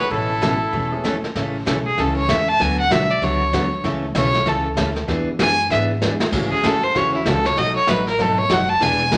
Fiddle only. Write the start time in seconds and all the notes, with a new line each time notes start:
0.00 B4
0.12 A4
1.86 G#4
1.99 A4
2.16 C#5
2.30 E5
2.48 A5
2.61 G#5
2.79 F#5
2.92 E5
3.10 D5
3.23 C#5
4.17 C#5
4.48 A4
5.40 G#5
5.71 E5
6.51 G#4
6.66 A4
6.83 C5
6.96 C#5
7.14 E4
7.28 A4
7.46 C#5
7.58 D#5
7.75 C#5
7.89 B4
8.08 A#4
8.21 A4
8.38 C#5
8.52 F#5
8.69 A5
8.83 G#5